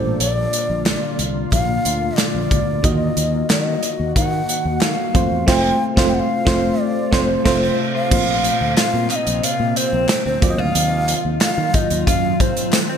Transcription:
Already playing: fm electric piano A#2 A#3 D4 F4 D5, ambient pad D3 A#3 F4, ocarina C5
0.04 fretless electric bass A1
0.20 fretless electric bass A#1, ocarina D5, closed hi-hat
0.53 closed hi-hat
0.70 fretless electric bass A#1
0.86 ocarina D5, snare, clap, closed hi-hat
1.19 fretless electric bass C2, closed hi-hat
1.52 fretless electric bass A#1, ocarina F5, kick, closed hi-hat
1.85 fretless electric bass D2, closed hi-hat
2.17 ocarina D5, snare, clap, closed hi-hat
2.35 fretless electric bass A#1
2.51 fretless electric bass C#2, kick, closed hi-hat
2.68 fretless electric bass D2
2.83 fretless electric bass D#2, fm electric piano D#3 A#3 D#4 F#4 D#5, ambient pad D#3 F#4, ocarina D#5, kick, closed hi-hat
3.17 fretless electric bass D#2, closed hi-hat
3.50 fretless electric bass D#3, ocarina D#5, snare, clap, closed hi-hat
3.83 closed hi-hat
4.00 fretless electric bass D#2
4.16 fretless electric bass D#3, ocarina F#5, kick, closed hi-hat
4.49 closed hi-hat
4.65 fretless electric bass D#2
4.81 fretless electric bass D#3, ocarina F5, snare, clap, closed hi-hat
5.14 fretless electric bass F2, ambient pad C3 A3 F4, fm electric piano A3 C4 F4 C5, kick, closed hi-hat
5.31 fretless electric bass E2
5.46 fretless electric bass F1, fm electric piano A3 C4 F4 C5, ocarina G5, kick, snare, crash
5.96 fretless electric bass F1, fm electric piano A3 C4 F4 C5, kick, snare
6.07 ocarina G5
6.15 ocarina F#5
6.19 ocarina F5
6.45 fretless electric bass F1, fm electric piano A3 C4 F4 C5, kick, snare
6.81 ocarina D5
7.11 fretless electric bass F1, fm electric piano A3 C4 F4 C5, ocarina D5, kick, snare
7.18 ocarina C5
7.44 fretless electric bass F1, fm electric piano A3 C4 F4 C5, clean electric guitar C4, ocarina C5, kick, snare, crash
7.62 clean electric guitar C4, ocarina C5
7.95 clean electric guitar F4, ocarina F5
8.10 fretless electric bass A#1, fm electric piano A#2 A#3 C4 F4 C5, ambient pad C3 A#3 C4, kick, crash
8.44 closed hi-hat
8.61 fretless electric bass D2
8.77 clean electric guitar F4, ocarina F5, muted fretless electric bass stroke, snare, clap, closed hi-hat, tambourine
8.94 fretless electric bass A#2
9.10 clean electric guitar D#4, ocarina F5, clap, closed hi-hat
9.16 ocarina D#5
9.27 fretless electric bass A#1, closed hi-hat
9.43 clean electric guitar F4, ocarina F5, muted fretless electric bass stroke, closed hi-hat
9.60 fretless electric bass A#2
9.76 clean electric guitar C4, ocarina C5, closed hi-hat
9.93 fretless electric bass A#1
10.09 clean electric guitar C4, ocarina C5, snare, clap, closed hi-hat, tambourine
10.26 fretless electric bass D2, clean electric guitar C4, ocarina C5
10.41 fretless electric bass D#2, fm electric piano D#3 F#3 A#3 F4 D5, ambient pad D#3 F#3 F4, kick, closed hi-hat
10.50 fm electric piano D#5
10.58 fretless electric bass D2, clean electric guitar F4, ocarina F5
10.75 fretless electric bass D#2, closed hi-hat
11.08 closed hi-hat
11.25 fretless electric bass D#2
11.41 clean electric guitar F4, ocarina F5, muted fretless electric bass stroke, snare, clap, closed hi-hat, tambourine
11.58 fretless electric bass D#3
11.74 clean electric guitar D#4, ocarina D#5, kick, closed hi-hat
11.90 fretless electric bass D#2, closed hi-hat
12.07 fretless electric bass F#2, clean electric guitar F4, ocarina F5, kick, closed hi-hat
12.40 clean electric guitar C4, ocarina C5, kick, closed hi-hat
12.57 closed hi-hat
12.72 clean electric guitar C4, ocarina C5, snare, clap, closed hi-hat, tambourine
12.89 clean electric guitar C4, ocarina C5

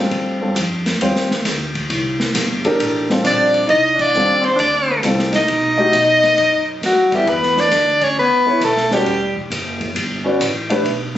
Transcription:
Already playing: upright piano G3 C4 F4 A4
0.11 upright bass G2, ride
0.41 upright piano G3 C4 F4 A4
0.55 upright bass F2, hi-hat pedal, ride
0.86 snare, ride
1.01 upright bass D#2, upright piano G3 C4 F4 C5, ride
1.16 snare
1.31 snare
1.45 upright bass D2, snare, hi-hat pedal, ride
1.75 kick, ride
1.90 upright bass C2, ride
2.20 snare
2.35 upright bass G1, snare, hi-hat pedal, ride
2.65 upright piano D4 G4 A4 A#4, kick, ride
2.79 upright bass A1, ride
3.10 upright piano G3 C4 F4 A4, snare
3.24 upright bass A#1, tenor saxophone D4, soprano saxophone D5, hi-hat pedal, ride
3.54 ride
3.67 upright bass C2, tenor saxophone D#4, soprano saxophone D#5, ride
3.95 tenor saxophone D4, kick, crash
4.01 soprano saxophone D5
4.14 upright bass D#2, upright piano G3 C4 F4 A4, hi-hat pedal
4.41 tenor saxophone C4, soprano saxophone C5, ride
4.56 upright bass D2, tenor saxophone D4, soprano saxophone D5, ride
5.03 upright bass C2, upright piano G3 C4 F4 A4, hi-hat pedal, ride
5.19 snare
5.32 tenor saxophone D#4, soprano saxophone D#5, snare, ride
5.48 upright bass B1, ride
5.78 upright piano A3 D#4 F#4 G4
5.92 upright bass B2, hi-hat pedal, ride
6.23 snare, ride
6.37 upright bass F#2, ride
6.81 upright bass G2, tenor saxophone F#3, snare, hi-hat pedal, ride
6.85 soprano saxophone F#4
7.11 tenor saxophone G3, upright piano B3 E4 A4 E5, kick, ride
7.15 soprano saxophone G4
7.26 upright bass E2, tenor saxophone B3, soprano saxophone B4, ride
7.43 snare
7.57 tenor saxophone D4, soprano saxophone D5, snare
7.71 upright bass D2, snare, hi-hat pedal, ride
8.01 tenor saxophone C#4, soprano saxophone C#5, kick, ride
8.16 upright bass C#2, tenor saxophone B3, soprano saxophone B4
8.46 upright piano B3 E4 A4 C#5, muted upright bass stroke
8.61 upright bass B1, tenor saxophone A3, soprano saxophone A4, hi-hat pedal, ride
8.77 snare
8.91 tenor saxophone G3, upright piano C#4 F#4 B4 D5, soprano saxophone G4, snare
9.05 upright bass E1, ride
9.36 kick
9.50 upright bass F#1, hi-hat pedal, ride
9.81 kick, ride
9.95 upright bass G1, ride
10.24 upright piano C#4 F#4 B4 D5
10.40 upright bass A1, hi-hat pedal, ride
10.70 upright piano A3 D4 G4 B4, ride
10.85 upright bass B1, ride

